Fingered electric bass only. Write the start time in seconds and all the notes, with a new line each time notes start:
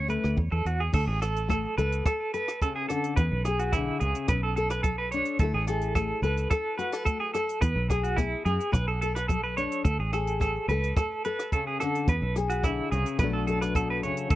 Already playing: D2
0.24 D2
0.37 E2
0.52 E2
0.65 E2
0.94 D2
1.07 A1
1.78 C#2
3.17 E2
3.32 B1
4.01 C#2
4.29 B1
5.39 D2
5.54 A1
6.22 C#2
7.62 E2
7.76 B1
8.46 F#2
8.73 B1
9.85 D2
9.99 A1
10.68 C#2
12.08 E2
12.22 B1
12.92 C2
13.19 B1
14.30 D2